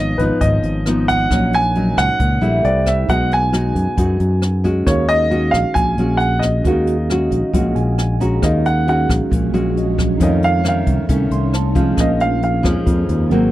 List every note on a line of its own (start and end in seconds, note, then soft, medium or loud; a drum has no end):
0.00 0.15 G#1 medium
0.00 0.39 G#2 medium
0.00 0.15 F3 medium
0.00 0.15 B3 soft
0.00 0.16 D#4 medium
0.00 1.25 D#4 soft
0.00 1.27 B4 soft
0.00 1.28 C#5 soft
0.00 0.20 D#5 loud
0.00 1.28 F5 medium
0.18 0.29 G#1 medium
0.18 0.83 F3 medium
0.18 0.83 B3 medium
0.18 0.83 D#4 medium
0.18 0.39 B4 medium
0.18 kick soft
0.18 closed hi-hat soft
0.41 0.62 G#1 medium
0.41 1.29 G#2 soft
0.41 1.04 D#5 medium
0.41 kick medium
0.41 closed hi-hat medium
0.63 1.26 G#1 medium
0.63 closed hi-hat soft
0.86 1.27 F3 medium
0.86 1.27 B3 medium
0.86 1.28 D#4 medium
0.86 cross-stick medium
0.86 closed hi-hat soft
1.08 1.54 F#5 loud
1.08 kick soft
1.08 closed hi-hat soft
1.29 1.93 A#1 medium
1.29 2.18 A#2 medium
1.29 1.60 F#3 medium
1.29 2.61 D#4 soft
1.29 2.62 A#4 soft
1.29 2.62 C#5 soft
1.29 kick medium
1.29 cross-stick medium
1.29 closed hi-hat medium
1.33 1.60 C#4 soft
1.33 1.60 D#4 medium
1.33 2.63 F#5 medium
1.53 1.99 G#5 loud
1.53 closed hi-hat soft
1.75 2.20 F#3 medium
1.75 2.20 C#4 medium
1.75 2.20 D#4 medium
1.75 closed hi-hat soft
1.97 2.08 C#2 medium
1.97 2.66 F#5 loud
1.97 kick soft
1.97 cross-stick medium
1.97 closed hi-hat soft
2.19 2.40 C#2 medium
2.19 2.62 A#2 medium
2.19 kick medium
2.19 closed hi-hat medium
2.41 2.63 A#1 medium
2.41 3.06 G3 medium
2.41 3.07 A3 medium
2.41 3.07 E4 medium
2.41 closed hi-hat soft
2.62 3.06 C2 medium
2.62 3.08 E4 soft
2.62 3.08 A4 soft
2.62 3.09 C5 soft
2.62 2.87 D5 medium
2.62 3.09 G5 soft
2.62 closed hi-hat soft
2.86 3.10 E5 medium
2.86 kick soft
2.86 cross-stick medium
2.86 closed hi-hat soft
3.06 3.71 B1 medium
3.06 3.95 B2 medium
3.06 3.50 G#3 medium
3.06 4.82 D#4 soft
3.06 3.50 D#4 medium
3.06 3.50 F#4 medium
3.06 4.83 G#4 soft
3.06 3.32 F#5 medium
3.06 kick medium
3.06 closed hi-hat medium
3.10 4.84 B4 soft
3.10 4.85 F#5 medium
3.31 4.62 G#5 loud
3.31 closed hi-hat soft
3.53 3.94 G#3 medium
3.53 3.94 D#4 medium
3.53 3.94 F#4 medium
3.53 cross-stick medium
3.53 closed hi-hat soft
3.75 3.86 F#2 medium
3.75 kick soft
3.75 closed hi-hat soft
3.97 4.84 F#2 medium
3.97 4.18 F#2 medium
3.97 4.42 G#3 soft
3.97 4.42 D#4 medium
3.97 4.42 F#4 medium
3.97 kick medium
3.97 closed hi-hat medium
4.20 4.83 F#2 medium
4.20 closed hi-hat soft
4.42 cross-stick medium
4.42 closed hi-hat soft
4.64 5.27 G#3 medium
4.64 5.28 C#4 medium
4.64 5.28 F#4 medium
4.64 kick soft
4.64 closed hi-hat soft
4.84 5.49 D#2 medium
4.84 5.73 D#3 medium
4.84 6.60 C#4 soft
4.84 6.61 F#4 soft
4.84 6.62 G#4 soft
4.84 5.10 C#5 medium
4.84 kick medium
4.84 cross-stick medium
4.84 closed hi-hat medium
4.90 6.63 F5 medium
5.08 5.55 D#5 loud
5.08 closed hi-hat soft
5.30 5.94 G#3 medium
5.30 5.94 C#4 soft
5.30 5.94 F#4 medium
5.30 closed hi-hat soft
5.51 5.64 A#1 medium
5.51 5.75 F5 medium
5.51 kick soft
5.51 cross-stick medium
5.51 closed hi-hat soft
5.74 5.96 A#1 medium
5.74 6.62 A#2 soft
5.74 6.21 G#5 loud
5.74 kick medium
5.74 closed hi-hat medium
5.98 6.61 A#1 medium
5.98 6.63 G#3 medium
5.98 6.63 C#4 medium
5.98 6.64 F#4 medium
5.98 closed hi-hat soft
6.17 6.39 F#5 medium
6.17 closed hi-hat soft
6.39 7.93 D#5 medium
6.39 kick soft
6.39 cross-stick medium
6.39 closed hi-hat soft
6.62 7.27 D#2 medium
6.62 8.38 C#4 soft
6.62 8.39 F#4 soft
6.62 kick medium
6.62 closed hi-hat soft
6.66 7.52 D#3 medium
6.66 6.94 G#3 soft
6.66 6.94 C#4 medium
6.66 6.94 F#4 medium
6.66 8.40 G#4 soft
6.66 8.41 F5 medium
6.87 closed hi-hat soft
7.10 7.51 G#3 soft
7.10 7.51 C#4 medium
7.10 7.51 F#4 medium
7.10 cross-stick medium
7.10 closed hi-hat soft
7.31 7.42 A#1 medium
7.31 7.53 D#5 soft
7.31 kick soft
7.31 closed hi-hat soft
7.54 7.74 A#1 medium
7.54 8.40 A#2 soft
7.54 8.17 G#3 medium
7.54 8.17 C#4 medium
7.54 8.17 F#4 medium
7.54 7.74 F#5 medium
7.54 kick medium
7.54 closed hi-hat medium
7.75 8.39 A#1 medium
7.75 7.96 G#5 medium
7.75 closed hi-hat soft
7.98 8.19 G#5 soft
7.98 cross-stick medium
7.98 closed hi-hat soft
8.20 8.84 G#3 medium
8.20 8.84 C#4 medium
8.20 8.84 F#4 medium
8.20 8.41 A#5 soft
8.20 kick soft
8.20 closed hi-hat soft
8.40 9.05 D#2 medium
8.40 10.19 F#3 medium
8.40 10.18 G#3 medium
8.40 9.72 C#4 soft
8.40 13.27 C#4 medium
8.40 9.73 F#4 soft
8.40 9.74 G#4 soft
8.40 8.65 D#5 medium
8.40 kick medium
8.40 cross-stick medium
8.40 closed hi-hat medium
8.44 9.30 D#3 medium
8.44 9.75 F5 medium
8.65 8.87 F#5 medium
8.65 closed hi-hat soft
8.88 9.31 G#3 medium
8.88 9.32 C#4 medium
8.88 9.32 F#4 medium
8.88 9.10 F#5 medium
8.88 closed hi-hat soft
9.09 9.20 A#1 medium
9.09 kick medium
9.09 cross-stick medium
9.09 closed hi-hat soft
9.30 9.52 A#1 medium
9.30 10.18 A#2 soft
9.30 kick medium
9.30 closed hi-hat medium
9.54 10.16 A#1 medium
9.54 10.19 G#3 medium
9.54 10.19 C#4 medium
9.54 10.19 F#4 medium
9.54 closed hi-hat soft
9.75 10.20 C#4 soft
9.75 10.20 F#4 soft
9.75 10.21 G#4 soft
9.75 10.21 D#5 soft
9.75 closed hi-hat soft
9.98 kick medium
9.98 cross-stick medium
9.98 closed hi-hat soft
10.17 11.07 F2 medium
10.17 10.83 F2 medium
10.17 10.61 D#3 medium
10.17 11.96 A3 medium
10.17 10.61 A3 medium
10.17 10.61 C#4 medium
10.17 11.93 D#4 medium
10.17 11.96 D#4 medium
10.17 11.94 A4 soft
10.17 kick medium
10.17 closed hi-hat medium
10.22 11.95 C#5 soft
10.22 10.43 D#5 medium
10.22 11.74 F5 medium
10.42 10.65 F5 medium
10.42 closed hi-hat soft
10.64 11.05 D#3 medium
10.64 11.05 A3 medium
10.64 11.06 C#4 medium
10.64 cross-stick medium
10.64 closed hi-hat soft
10.68 10.88 F5 medium
10.87 10.97 C2 medium
10.87 kick medium
10.87 closed hi-hat soft
11.09 11.30 C2 medium
11.09 11.53 D#3 medium
11.09 11.53 A3 medium
11.09 11.53 C#4 medium
11.09 kick medium
11.09 closed hi-hat medium
11.31 11.94 C2 medium
11.31 11.52 C6 medium
11.31 closed hi-hat soft
11.53 11.75 A5 medium
11.53 cross-stick medium
11.53 closed hi-hat soft
11.75 12.39 F3 medium
11.75 12.39 G#3 medium
11.75 12.39 C#4 medium
11.75 11.96 F5 medium
11.75 kick medium
11.75 closed hi-hat soft
11.95 12.60 A#1 medium
11.95 12.84 A#2 medium
11.95 13.52 A#3 medium
11.95 13.27 C#4 medium
11.95 13.28 G#4 soft
11.95 kick medium
11.95 cross-stick medium
11.95 closed hi-hat medium
12.00 13.29 A#4 soft
12.00 12.21 D#5 medium
12.00 13.31 F5 medium
12.20 12.42 F5 medium
12.20 closed hi-hat soft
12.42 12.65 F5 medium
12.42 closed hi-hat soft
12.63 12.75 F2 medium
12.63 13.27 F3 medium
12.63 13.27 G#3 medium
12.63 13.28 C#4 medium
12.63 kick medium
12.63 cross-stick medium
12.63 closed hi-hat soft
12.86 13.29 F2 medium
12.86 13.07 F2 medium
12.86 kick medium
12.86 closed hi-hat medium
13.09 13.30 D#2 medium
13.09 closed hi-hat soft
13.30 13.52 G#1 loud
13.30 13.52 F#3 medium
13.30 13.52 A#3 medium
13.30 13.52 C4 medium
13.30 13.52 G#4 medium
13.30 13.52 A#4 medium
13.30 13.52 F#5 medium
13.30 closed hi-hat soft